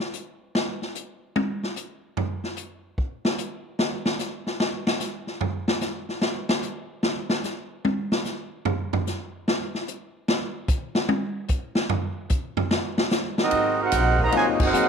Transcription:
0.13 hi-hat pedal
0.55 snare
0.82 snare
0.95 hi-hat pedal
1.36 high tom
1.63 snare
1.76 hi-hat pedal
2.17 floor tom
2.44 snare
2.57 hi-hat pedal
2.98 kick
3.25 snare
3.38 hi-hat pedal
3.79 snare
4.06 snare
4.19 snare, hi-hat pedal
4.47 snare
4.60 snare
4.87 snare
5.00 snare, hi-hat pedal
5.27 snare
5.41 floor tom
5.68 snare
5.81 snare, hi-hat pedal
6.09 snare
6.22 snare
6.49 snare
6.62 hi-hat pedal
7.03 snare
7.29 snare
7.44 snare, hi-hat pedal
7.85 high tom
8.12 snare
8.25 snare, hi-hat pedal
8.65 floor tom
8.93 floor tom
9.07 snare, hi-hat pedal
9.48 snare
9.75 snare
9.88 hi-hat pedal
10.28 snare
10.68 kick, hi-hat pedal
10.95 snare
11.09 high tom
11.48 kick, hi-hat pedal
11.75 snare
11.89 floor tom
12.29 kick, hi-hat pedal
12.57 floor tom
12.71 snare
12.98 snare
13.11 snare, hi-hat pedal
13.38 F#3 C4 D#4, snare
13.43 C4 F#4 A#4 D#5
13.51 G#1 C3 G#3 A#3 D#4, kick, ride
13.82 C4 D#4 F#4 A#4 C5 F#5
13.92 A#1, kick, hi-hat pedal, ride
14.19 D#3 F#3 A#3, kick
14.24 F#4 C5 D#5 A#5
14.32 C2 C3 D#3 F#3 G#3 A#3 C4 D#4 F4, kick, ride
14.36 F#4 C5 D#5 G#5
14.46 G#1
14.60 F#1 C4 D#4 F#4, kick, crash
14.65 D#4 A#4 C5 F#5
14.73 F2 F#3 A#3 C4 D#4 G#4, hi-hat pedal

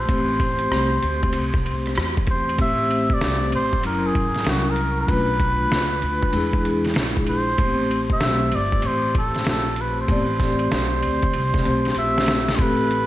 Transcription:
0.01 C5
0.05 A1 A3 C4, kick, ride
0.10 G4 C5
0.40 kick, cross-stick, ride
0.59 ride
0.71 C2, cross-stick, hi-hat pedal, ride
1.03 D2, ride
1.23 kick, ride
1.33 C2, ride
1.54 kick, cross-stick
1.66 ride
1.86 cross-stick, ride
1.95 E2, cross-stick, hi-hat pedal, ride
2.17 kick
2.27 C5, kick, ride
2.49 ride
2.56 A1 A3 C4 G4, kick, ride
2.61 C5 E5
2.91 ride
3.10 D5, kick
3.21 C2, snare, hi-hat pedal, ride
3.52 A1 C5, ride
3.73 kick
3.80 F#3 C#4, ride
3.84 F#1 E4 A#4
4.06 G#4
4.15 G#1, kick, ride
4.34 snare, ride
4.44 C2, snare, hi-hat pedal, ride
4.49 F#4
4.70 A#4
4.76 ride
5.01 B4
5.05 B1 A3 C#4 F4, kick, ride
5.12 D4 B4
5.40 kick, ride
5.71 C#2, snare, hi-hat pedal, ride
6.02 D2, ride
6.23 kick
6.30 E2 G#3 D4, ride
6.34 E4 G#4
6.53 kick
6.65 ride
6.84 snare, ride
6.94 A#1, snare, hi-hat pedal, ride
7.17 kick
7.26 C5, ride
7.56 A1 A3 B3 G4, kick, ride
7.62 C4 C5
7.91 ride
8.10 E5, kick
8.21 B1, snare, hi-hat pedal, ride
8.52 G1 D5, ride
8.72 kick
8.82 A1, ride
8.87 C5
9.15 A4, kick, ride
9.35 snare, ride
9.44 A#1, snare, hi-hat pedal, ride
9.50 A4
9.76 ride
9.81 B4
10.02 A3 C5
10.07 A1 B3 G4, kick, ride
10.11 C4 D5
10.40 kick, snare, ride
10.59 ride
10.72 B1, snare, hi-hat pedal, ride
11.02 D2, ride
11.22 kick, ride
11.33 C2, ride
11.54 kick, snare
11.63 B1 A3 C4 G4 C5, ride
11.85 snare, ride
11.95 A#1 E5, hi-hat pedal, ride
12.18 snare
12.26 snare, ride
12.48 snare, ride
12.55 A1 A3 C4 C5, kick, ride
12.59 G4 A4 B4
12.91 ride

